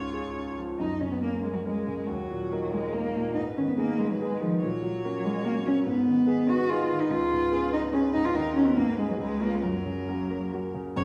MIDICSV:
0, 0, Header, 1, 4, 480
1, 0, Start_track
1, 0, Key_signature, 6, "major"
1, 0, Tempo, 430108
1, 892, Time_signature, 3, 2, 24, 8
1, 3750, Tempo, 415800
1, 9990, Tempo, 438276
1, 12482, End_track
2, 0, Start_track
2, 0, Title_t, "Violin"
2, 0, Program_c, 0, 40
2, 0, Note_on_c, 0, 73, 73
2, 621, Note_off_c, 0, 73, 0
2, 895, Note_on_c, 0, 63, 61
2, 984, Note_off_c, 0, 63, 0
2, 1136, Note_on_c, 0, 61, 45
2, 1251, Note_on_c, 0, 59, 46
2, 1268, Note_off_c, 0, 61, 0
2, 1360, Note_off_c, 0, 59, 0
2, 1367, Note_on_c, 0, 58, 57
2, 1456, Note_off_c, 0, 58, 0
2, 1615, Note_on_c, 0, 56, 53
2, 1719, Note_on_c, 0, 66, 41
2, 1736, Note_off_c, 0, 56, 0
2, 1844, Note_off_c, 0, 66, 0
2, 1855, Note_on_c, 0, 56, 52
2, 2312, Note_on_c, 0, 66, 54
2, 2329, Note_off_c, 0, 56, 0
2, 3029, Note_on_c, 0, 56, 58
2, 3046, Note_off_c, 0, 66, 0
2, 3267, Note_on_c, 0, 58, 58
2, 3284, Note_off_c, 0, 56, 0
2, 3744, Note_off_c, 0, 58, 0
2, 3764, Note_on_c, 0, 71, 46
2, 5163, Note_off_c, 0, 71, 0
2, 5186, Note_on_c, 0, 73, 53
2, 6590, Note_off_c, 0, 73, 0
2, 6623, Note_on_c, 0, 71, 60
2, 8021, Note_off_c, 0, 71, 0
2, 8069, Note_on_c, 0, 71, 62
2, 9006, Note_off_c, 0, 71, 0
2, 9020, Note_on_c, 0, 71, 58
2, 9492, Note_off_c, 0, 71, 0
2, 9506, Note_on_c, 0, 70, 59
2, 9989, Note_on_c, 0, 71, 56
2, 10005, Note_off_c, 0, 70, 0
2, 10455, Note_off_c, 0, 71, 0
2, 10467, Note_on_c, 0, 71, 56
2, 10933, Note_on_c, 0, 70, 50
2, 10950, Note_off_c, 0, 71, 0
2, 12167, Note_off_c, 0, 70, 0
2, 12399, Note_on_c, 0, 73, 85
2, 12482, Note_off_c, 0, 73, 0
2, 12482, End_track
3, 0, Start_track
3, 0, Title_t, "Grand piano"
3, 0, Program_c, 1, 0
3, 0, Control_c, 1, 64, 127
3, 0, Note_on_c, 1, 37, 49
3, 0, Note_on_c, 1, 44, 37
3, 0, Note_on_c, 1, 61, 38
3, 151, Note_on_c, 1, 68, 34
3, 306, Note_off_c, 1, 61, 0
3, 386, Note_on_c, 1, 61, 37
3, 548, Note_off_c, 1, 68, 0
3, 642, Note_on_c, 1, 53, 39
3, 786, Note_off_c, 1, 61, 0
3, 843, Note_off_c, 1, 37, 0
3, 888, Note_off_c, 1, 53, 0
3, 888, Note_on_c, 1, 42, 42
3, 915, Control_c, 1, 64, 0
3, 925, Note_off_c, 1, 44, 0
3, 1073, Control_c, 1, 64, 127
3, 1130, Note_on_c, 1, 49, 34
3, 1370, Note_on_c, 1, 58, 35
3, 1374, Note_on_c, 1, 61, 34
3, 1381, Note_on_c, 1, 70, 37
3, 1515, Note_off_c, 1, 49, 0
3, 1586, Note_off_c, 1, 58, 0
3, 1588, Note_off_c, 1, 61, 0
3, 1592, Note_off_c, 1, 70, 0
3, 1617, Note_on_c, 1, 58, 30
3, 1833, Note_off_c, 1, 58, 0
3, 1850, Note_on_c, 1, 58, 36
3, 1853, Note_on_c, 1, 61, 36
3, 1857, Note_on_c, 1, 70, 39
3, 2065, Note_off_c, 1, 58, 0
3, 2066, Note_off_c, 1, 61, 0
3, 2068, Note_off_c, 1, 70, 0
3, 2087, Note_on_c, 1, 49, 38
3, 2282, Note_off_c, 1, 42, 0
3, 2319, Note_on_c, 1, 39, 43
3, 2327, Note_off_c, 1, 49, 0
3, 2349, Control_c, 1, 64, 0
3, 2497, Control_c, 1, 64, 127
3, 2571, Note_on_c, 1, 46, 36
3, 2813, Note_on_c, 1, 58, 37
3, 2814, Note_on_c, 1, 63, 37
3, 2816, Note_on_c, 1, 70, 41
3, 2948, Note_off_c, 1, 46, 0
3, 3021, Note_off_c, 1, 58, 0
3, 3022, Note_off_c, 1, 63, 0
3, 3023, Note_off_c, 1, 70, 0
3, 3042, Note_on_c, 1, 58, 33
3, 3265, Note_off_c, 1, 58, 0
3, 3282, Note_on_c, 1, 58, 35
3, 3289, Note_on_c, 1, 63, 36
3, 3291, Note_on_c, 1, 70, 37
3, 3493, Note_off_c, 1, 58, 0
3, 3497, Note_off_c, 1, 63, 0
3, 3498, Note_off_c, 1, 70, 0
3, 3521, Note_on_c, 1, 46, 40
3, 3702, Note_off_c, 1, 39, 0
3, 3752, Note_off_c, 1, 46, 0
3, 3754, Note_on_c, 1, 44, 52
3, 3772, Control_c, 1, 64, 0
3, 3961, Control_c, 1, 64, 127
3, 3987, Note_on_c, 1, 51, 39
3, 4223, Note_on_c, 1, 59, 39
3, 4231, Note_on_c, 1, 63, 41
3, 4233, Note_on_c, 1, 68, 44
3, 4375, Note_off_c, 1, 51, 0
3, 4445, Note_off_c, 1, 59, 0
3, 4449, Note_off_c, 1, 63, 0
3, 4450, Note_off_c, 1, 68, 0
3, 4465, Note_on_c, 1, 59, 35
3, 4710, Note_off_c, 1, 59, 0
3, 4727, Note_on_c, 1, 59, 40
3, 4735, Note_on_c, 1, 63, 38
3, 4737, Note_on_c, 1, 68, 41
3, 4941, Note_off_c, 1, 59, 0
3, 4945, Note_off_c, 1, 63, 0
3, 4946, Note_off_c, 1, 68, 0
3, 4968, Note_on_c, 1, 51, 46
3, 5161, Note_off_c, 1, 44, 0
3, 5206, Note_off_c, 1, 51, 0
3, 5210, Note_on_c, 1, 46, 55
3, 5226, Control_c, 1, 64, 0
3, 5410, Control_c, 1, 64, 127
3, 5444, Note_on_c, 1, 54, 44
3, 5697, Note_on_c, 1, 58, 45
3, 5701, Note_on_c, 1, 61, 46
3, 5704, Note_on_c, 1, 66, 45
3, 5828, Note_off_c, 1, 54, 0
3, 5905, Note_off_c, 1, 58, 0
3, 5908, Note_off_c, 1, 61, 0
3, 5910, Note_off_c, 1, 66, 0
3, 5923, Note_on_c, 1, 58, 38
3, 6138, Note_off_c, 1, 58, 0
3, 6156, Note_on_c, 1, 58, 44
3, 6164, Note_on_c, 1, 61, 40
3, 6168, Note_on_c, 1, 66, 48
3, 6366, Note_off_c, 1, 58, 0
3, 6371, Note_off_c, 1, 61, 0
3, 6373, Note_off_c, 1, 66, 0
3, 6392, Note_on_c, 1, 54, 47
3, 6588, Note_off_c, 1, 46, 0
3, 6627, Note_off_c, 1, 54, 0
3, 6635, Note_on_c, 1, 44, 62
3, 6646, Control_c, 1, 64, 0
3, 6852, Control_c, 1, 64, 127
3, 6871, Note_on_c, 1, 51, 43
3, 7103, Note_on_c, 1, 59, 49
3, 7106, Note_on_c, 1, 63, 43
3, 7111, Note_on_c, 1, 68, 52
3, 7251, Note_off_c, 1, 51, 0
3, 7320, Note_off_c, 1, 59, 0
3, 7322, Note_off_c, 1, 63, 0
3, 7325, Note_off_c, 1, 68, 0
3, 7343, Note_on_c, 1, 59, 46
3, 7576, Note_off_c, 1, 59, 0
3, 7593, Note_on_c, 1, 59, 46
3, 7595, Note_on_c, 1, 63, 49
3, 7596, Note_on_c, 1, 68, 49
3, 7808, Note_off_c, 1, 59, 0
3, 7809, Note_off_c, 1, 63, 0
3, 7809, Note_off_c, 1, 68, 0
3, 7833, Note_on_c, 1, 51, 51
3, 8030, Note_off_c, 1, 44, 0
3, 8066, Note_on_c, 1, 37, 60
3, 8071, Note_off_c, 1, 51, 0
3, 8091, Control_c, 1, 64, 0
3, 8306, Control_c, 1, 64, 127
3, 8316, Note_on_c, 1, 44, 49
3, 8547, Note_on_c, 1, 59, 46
3, 8550, Note_on_c, 1, 61, 45
3, 8557, Note_on_c, 1, 68, 52
3, 8695, Note_off_c, 1, 44, 0
3, 8762, Note_off_c, 1, 59, 0
3, 8764, Note_off_c, 1, 61, 0
3, 8767, Note_off_c, 1, 68, 0
3, 8782, Note_on_c, 1, 59, 46
3, 9007, Note_off_c, 1, 59, 0
3, 9024, Note_on_c, 1, 59, 45
3, 9026, Note_on_c, 1, 61, 45
3, 9033, Note_on_c, 1, 68, 49
3, 9240, Note_off_c, 1, 59, 0
3, 9241, Note_off_c, 1, 61, 0
3, 9245, Note_off_c, 1, 68, 0
3, 9272, Note_on_c, 1, 44, 52
3, 9460, Note_off_c, 1, 37, 0
3, 9499, Note_on_c, 1, 39, 59
3, 9508, Note_off_c, 1, 44, 0
3, 9527, Control_c, 1, 64, 0
3, 9707, Control_c, 1, 64, 127
3, 9742, Note_on_c, 1, 63, 45
3, 9750, Note_on_c, 1, 66, 49
3, 9963, Note_off_c, 1, 63, 0
3, 9967, Note_off_c, 1, 66, 0
3, 9972, Note_off_c, 1, 39, 0
3, 9990, Note_on_c, 1, 44, 55
3, 10010, Control_c, 1, 64, 0
3, 10174, Control_c, 1, 64, 127
3, 10224, Note_on_c, 1, 63, 41
3, 10232, Note_on_c, 1, 68, 45
3, 10433, Note_off_c, 1, 63, 0
3, 10437, Note_off_c, 1, 68, 0
3, 10441, Note_off_c, 1, 44, 0
3, 10451, Note_on_c, 1, 37, 56
3, 10476, Control_c, 1, 64, 0
3, 10643, Control_c, 1, 64, 127
3, 10686, Note_on_c, 1, 61, 45
3, 10688, Note_on_c, 1, 65, 50
3, 10909, Note_off_c, 1, 61, 0
3, 10910, Note_off_c, 1, 65, 0
3, 10921, Note_off_c, 1, 37, 0
3, 10939, Note_on_c, 1, 42, 52
3, 10958, Control_c, 1, 64, 0
3, 11168, Control_c, 1, 64, 127
3, 11186, Note_on_c, 1, 49, 44
3, 11435, Note_on_c, 1, 58, 39
3, 11437, Note_on_c, 1, 66, 43
3, 11438, Note_on_c, 1, 61, 43
3, 11581, Note_off_c, 1, 49, 0
3, 11654, Note_off_c, 1, 58, 0
3, 11655, Note_off_c, 1, 66, 0
3, 11656, Note_off_c, 1, 61, 0
3, 11675, Note_on_c, 1, 58, 39
3, 11906, Note_off_c, 1, 58, 0
3, 11922, Note_on_c, 1, 58, 39
3, 11927, Note_on_c, 1, 61, 41
3, 11929, Note_on_c, 1, 66, 44
3, 12134, Note_off_c, 1, 58, 0
3, 12136, Note_off_c, 1, 61, 0
3, 12137, Note_off_c, 1, 66, 0
3, 12155, Note_on_c, 1, 49, 46
3, 12349, Note_off_c, 1, 42, 0
3, 12392, Note_off_c, 1, 49, 0
3, 12396, Note_on_c, 1, 42, 58
3, 12399, Note_on_c, 1, 30, 58
3, 12413, Control_c, 1, 64, 0
3, 12482, Note_off_c, 1, 30, 0
3, 12482, Note_off_c, 1, 42, 0
3, 12482, End_track
4, 0, Start_track
4, 0, Title_t, "Cello"
4, 0, Program_c, 2, 42
4, 0, Note_on_c, 2, 65, 52
4, 623, Note_off_c, 2, 65, 0
4, 878, Note_on_c, 2, 63, 66
4, 1121, Note_on_c, 2, 61, 52
4, 1138, Note_off_c, 2, 63, 0
4, 1227, Note_off_c, 2, 61, 0
4, 1234, Note_on_c, 2, 59, 53
4, 1343, Note_off_c, 2, 59, 0
4, 1350, Note_on_c, 2, 58, 59
4, 1585, Note_off_c, 2, 58, 0
4, 1592, Note_on_c, 2, 56, 53
4, 1643, Note_off_c, 2, 56, 0
4, 1708, Note_on_c, 2, 54, 55
4, 1760, Note_off_c, 2, 54, 0
4, 1827, Note_on_c, 2, 56, 60
4, 2306, Note_off_c, 2, 56, 0
4, 2324, Note_on_c, 2, 54, 63
4, 3046, Note_on_c, 2, 56, 57
4, 3063, Note_off_c, 2, 54, 0
4, 3278, Note_on_c, 2, 58, 65
4, 3295, Note_off_c, 2, 56, 0
4, 3723, Note_off_c, 2, 58, 0
4, 3729, Note_on_c, 2, 63, 68
4, 3821, Note_off_c, 2, 63, 0
4, 3994, Note_on_c, 2, 61, 67
4, 4041, Note_off_c, 2, 61, 0
4, 4112, Note_on_c, 2, 59, 64
4, 4159, Note_off_c, 2, 59, 0
4, 4229, Note_on_c, 2, 58, 72
4, 4476, Note_on_c, 2, 56, 67
4, 4493, Note_off_c, 2, 58, 0
4, 4608, Note_on_c, 2, 54, 60
4, 4625, Note_off_c, 2, 56, 0
4, 4722, Note_off_c, 2, 54, 0
4, 4737, Note_on_c, 2, 56, 73
4, 4957, Note_on_c, 2, 53, 71
4, 4975, Note_off_c, 2, 56, 0
4, 5203, Note_on_c, 2, 54, 69
4, 5221, Note_off_c, 2, 53, 0
4, 5929, Note_on_c, 2, 56, 75
4, 5947, Note_off_c, 2, 54, 0
4, 6160, Note_off_c, 2, 56, 0
4, 6171, Note_on_c, 2, 58, 78
4, 6261, Note_off_c, 2, 58, 0
4, 6409, Note_on_c, 2, 61, 82
4, 6500, Note_off_c, 2, 61, 0
4, 6637, Note_on_c, 2, 59, 85
4, 7365, Note_on_c, 2, 66, 86
4, 7383, Note_off_c, 2, 59, 0
4, 7597, Note_on_c, 2, 65, 80
4, 7615, Note_off_c, 2, 66, 0
4, 7958, Note_on_c, 2, 63, 77
4, 7975, Note_off_c, 2, 65, 0
4, 8075, Note_on_c, 2, 65, 96
4, 8093, Note_off_c, 2, 63, 0
4, 8785, Note_off_c, 2, 65, 0
4, 8792, Note_on_c, 2, 63, 79
4, 8884, Note_off_c, 2, 63, 0
4, 9022, Note_on_c, 2, 61, 84
4, 9114, Note_off_c, 2, 61, 0
4, 9257, Note_on_c, 2, 63, 92
4, 9389, Note_on_c, 2, 65, 82
4, 9407, Note_off_c, 2, 63, 0
4, 9507, Note_on_c, 2, 63, 88
4, 9524, Note_off_c, 2, 65, 0
4, 9741, Note_off_c, 2, 63, 0
4, 9748, Note_on_c, 2, 61, 76
4, 9873, Note_on_c, 2, 59, 77
4, 9890, Note_off_c, 2, 61, 0
4, 9984, Note_off_c, 2, 59, 0
4, 9991, Note_on_c, 2, 58, 81
4, 10217, Note_off_c, 2, 58, 0
4, 10223, Note_on_c, 2, 56, 71
4, 10336, Note_off_c, 2, 56, 0
4, 10358, Note_on_c, 2, 54, 62
4, 10456, Note_off_c, 2, 54, 0
4, 10463, Note_on_c, 2, 56, 78
4, 10710, Note_on_c, 2, 58, 80
4, 10726, Note_off_c, 2, 56, 0
4, 10846, Note_on_c, 2, 56, 67
4, 10862, Note_off_c, 2, 58, 0
4, 10953, Note_off_c, 2, 56, 0
4, 10974, Note_on_c, 2, 54, 68
4, 11916, Note_off_c, 2, 54, 0
4, 12404, Note_on_c, 2, 49, 68
4, 12482, Note_off_c, 2, 49, 0
4, 12482, End_track
0, 0, End_of_file